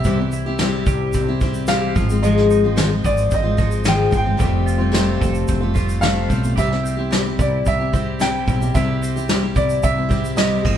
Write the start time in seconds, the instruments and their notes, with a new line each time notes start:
Already playing: clean electric guitar C4 E4 G4, upright piano E5
0.04 fretless electric bass C2, steel-string acoustic guitar C3 G3 C4 E4 G4, clean electric guitar E3, kick, shaker
0.19 steel-string acoustic guitar C4 E4 G4
0.32 clean electric guitar E4, shaker
0.46 steel-string acoustic guitar C4 E4 G4
0.59 steel-string acoustic guitar C3 G3 C4 E4 G4, clean electric guitar C4, snare, shaker
0.86 fretless electric bass C2, clean electric guitar G4, kick, shaker
1.13 fretless electric bass C2, clean electric guitar C4, kick, shaker
1.27 steel-string acoustic guitar C4 E4 G4
1.41 steel-string acoustic guitar G3 C4 E4 G4, kick, shaker
1.54 shaker
1.67 steel-string acoustic guitar C3 G3 C4 E4 G4, clean electric guitar G4, upright piano F5, snare, shaker
1.95 fretless electric bass G#1, steel-string acoustic guitar F3 G#3 C4 F4, clean electric guitar F3, kick, shaker
2.10 steel-string acoustic guitar F3 G#3 C4 F4, shaker
2.23 steel-string acoustic guitar G#2 D#3 F3 G#3 C4 F4, clean electric guitar F3, upright piano D#5, shaker
2.37 snare
2.51 clean electric guitar D#4, shaker
2.64 steel-string acoustic guitar F3 G#3 C4 F4
2.76 steel-string acoustic guitar G#2 D#3 F3 G#3 C4 F4, clean electric guitar C4, snare, shaker
2.88 steel-string acoustic guitar F3 G#3 C4 F4
3.04 fretless electric bass G#1, clean electric guitar G#4, upright piano D5, kick, shaker
3.17 shaker
3.31 fretless electric bass G#1, clean electric guitar C4, upright piano D#5, kick, shaker
3.43 steel-string acoustic guitar F3 G#3 C4 F4
3.57 steel-string acoustic guitar F3 G#3 C4 F4, clean electric guitar D#4, kick, shaker
3.71 shaker
3.85 steel-string acoustic guitar G#2 D#3 F3 G#3 C4 F4, clean electric guitar G#4, upright piano G5, snare, shaker
4.11 fretless electric bass G1, steel-string acoustic guitar F3 G#3 C4 F4, clean electric guitar C4, kick, shaker
4.17 upright piano G5
4.24 steel-string acoustic guitar F3 G#3 C4 F4
4.37 fretless electric bass F1, steel-string acoustic guitar F2 C3 G3 A3 C4 F4, clean electric guitar G3, kick, shaker
4.66 clean electric guitar F4, shaker
4.78 steel-string acoustic guitar G3 A3 C4 F4
4.92 steel-string acoustic guitar F2 C3 G3 A3 C4 F4, clean electric guitar C4, snare, shaker
5.21 fretless electric bass F1, clean electric guitar A4, kick, shaker
5.35 shaker
5.48 fretless electric bass F1, clean electric guitar C4, kick, shaker
5.61 steel-string acoustic guitar G3 A3 C4 F4
5.74 steel-string acoustic guitar G3 A3 C4 F4, clean electric guitar F4, kick, shaker
5.89 shaker
6.01 steel-string acoustic guitar F2 C3 G3 A3 C4 F4, clean electric guitar A4, upright piano F5, snare, shaker
6.28 fretless electric bass B1, steel-string acoustic guitar G3 A3 C4 F4, clean electric guitar C4, kick, shaker
6.43 steel-string acoustic guitar G3 A3 C4 F4, shaker
6.56 fretless electric bass C2, steel-string acoustic guitar C3 G3 C4 E4 G4, clean electric guitar G3, upright piano E5, kick, shaker
6.70 steel-string acoustic guitar C4 E4 G4, snare
6.83 clean electric guitar C4, shaker
6.97 steel-string acoustic guitar C4 E4 G4
7.11 steel-string acoustic guitar C3 G3 C4 E4 G4, clean electric guitar G3, snare, shaker
7.24 steel-string acoustic guitar C4 E4 G4
7.39 fretless electric bass C2, clean electric guitar E4, upright piano D5, kick, shaker
7.66 fretless electric bass C2, clean electric guitar G3, upright piano E5, kick, shaker
7.79 steel-string acoustic guitar C4 E4 G4
7.93 steel-string acoustic guitar G3 C4 E4 G4, clean electric guitar C4, kick, shaker
8.20 steel-string acoustic guitar C3 G3 C4 E4 G4, clean electric guitar E4, upright piano G5, snare, shaker
8.46 fretless electric bass B1, steel-string acoustic guitar G3 C4 E4 G4, clean electric guitar G3, kick, shaker
8.60 steel-string acoustic guitar C4 E4 G4, shaker
8.74 fretless electric bass C2, steel-string acoustic guitar C3 G3 C4 E4 G4, clean electric guitar G3, upright piano E5, kick, shaker
9.02 clean electric guitar C4, shaker
9.16 steel-string acoustic guitar C4 E4 G4, shaker
9.28 steel-string acoustic guitar C3 G3 C4 E4 G4, clean electric guitar G3, snare, shaker
9.42 steel-string acoustic guitar C4 E4 G4
9.56 fretless electric bass C2, clean electric guitar E4, upright piano D5, kick, shaker
9.70 shaker
9.83 fretless electric bass C2, clean electric guitar G3, upright piano E5, kick, shaker
9.96 steel-string acoustic guitar C4 E4 G4
10.09 steel-string acoustic guitar G3 C4 E4 G4, clean electric guitar C4, kick, shaker
10.25 shaker
10.36 steel-string acoustic guitar C3 G3 C4 E4 G4, clean electric guitar E4, upright piano D#5, snare, shaker
10.63 fretless electric bass G#1, steel-string acoustic guitar F3 G#3 C4 F4, clean electric guitar F3, kick, crash